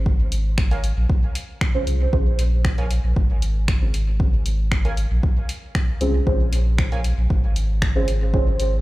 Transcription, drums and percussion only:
0.06 kick loud
0.32 open hi-hat medium
0.58 finger snap medium
0.58 kick loud
0.71 open hi-hat soft
0.84 open hi-hat medium
1.10 kick loud
1.35 open hi-hat medium
1.61 finger snap medium
1.61 kick loud
1.87 open hi-hat medium
2.13 kick loud
2.39 open hi-hat medium
2.65 finger snap medium
2.65 kick loud
2.78 open hi-hat soft
2.91 open hi-hat medium
3.16 kick loud
3.42 open hi-hat medium
3.68 finger snap medium
3.68 kick loud
3.94 open hi-hat medium
4.20 kick loud
4.46 open hi-hat medium
4.72 finger snap medium
4.72 kick loud
4.85 open hi-hat soft
4.97 open hi-hat medium
5.23 kick loud
5.49 open hi-hat medium
5.75 finger snap medium
5.75 kick loud
6.01 open hi-hat medium
6.27 kick loud
6.53 open hi-hat medium
6.78 finger snap medium
6.78 kick loud
6.92 open hi-hat soft
7.04 open hi-hat medium
7.30 kick loud
7.56 open hi-hat medium
7.82 finger snap medium
7.82 kick loud
8.08 open hi-hat medium
8.34 kick loud
8.60 open hi-hat medium

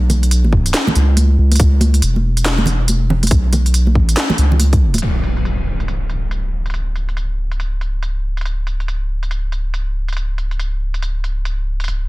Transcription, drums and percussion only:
0.10 closed hi-hat medium
0.10 high conga medium
0.10 low conga medium
0.23 closed hi-hat soft
0.31 closed hi-hat medium
0.44 high conga medium
0.53 kick medium
0.66 closed hi-hat medium
0.74 snare loud
0.74 clap medium
0.74 closed hi-hat medium
0.87 high conga medium
0.87 low conga medium
0.95 closed hi-hat medium
1.17 closed hi-hat medium
1.17 high conga medium
1.52 closed hi-hat soft
1.52 high conga medium
1.56 closed hi-hat medium
1.60 kick loud
1.60 closed hi-hat medium
1.81 closed hi-hat medium
1.81 high conga medium
1.94 closed hi-hat soft
2.02 closed hi-hat medium
2.16 high conga medium
2.37 closed hi-hat medium
2.45 snare loud
2.45 clap medium
2.45 closed hi-hat medium
2.58 high conga medium
2.66 closed hi-hat medium
2.66 low conga loud
2.88 closed hi-hat medium
2.88 high conga medium
3.10 low conga loud
3.23 closed hi-hat medium
3.23 high conga medium
3.27 closed hi-hat medium
3.31 kick loud
3.31 closed hi-hat medium
3.53 closed hi-hat medium
3.53 high conga medium
3.53 low conga medium
3.66 closed hi-hat soft
3.74 closed hi-hat medium
3.87 high conga medium
3.95 kick medium
4.09 closed hi-hat medium
4.17 snare loud
4.17 clap medium
4.17 closed hi-hat medium
4.30 high conga loud
4.30 low conga medium
4.38 closed hi-hat medium
4.52 low conga medium
4.60 closed hi-hat medium
4.60 high conga medium
4.73 kick medium
4.73 closed hi-hat soft
4.94 closed hi-hat medium
4.94 high conga medium
4.98 closed hi-hat medium
5.02 closed hi-hat medium
5.02 crash medium
5.24 closed hi-hat soft
5.37 closed hi-hat soft
5.45 closed hi-hat medium
5.80 closed hi-hat soft
5.88 closed hi-hat medium
6.10 closed hi-hat soft
6.31 closed hi-hat medium
6.66 closed hi-hat soft
6.70 closed hi-hat medium
6.74 closed hi-hat medium
6.96 closed hi-hat soft
7.09 closed hi-hat soft
7.17 closed hi-hat medium
7.52 closed hi-hat soft
7.60 closed hi-hat medium
7.81 closed hi-hat soft
8.03 closed hi-hat medium
8.37 closed hi-hat soft
8.41 closed hi-hat medium
8.45 closed hi-hat medium
8.67 closed hi-hat soft
8.80 closed hi-hat soft
8.88 closed hi-hat medium
9.23 closed hi-hat soft
9.31 closed hi-hat medium
9.52 closed hi-hat soft
9.74 closed hi-hat medium
10.08 closed hi-hat soft
10.13 closed hi-hat medium
10.17 closed hi-hat medium
10.38 closed hi-hat soft
10.51 closed hi-hat soft
10.60 closed hi-hat medium
10.94 closed hi-hat soft
11.02 closed hi-hat medium
11.24 closed hi-hat soft
11.45 closed hi-hat medium
11.80 closed hi-hat soft
11.84 closed hi-hat medium
11.88 closed hi-hat medium

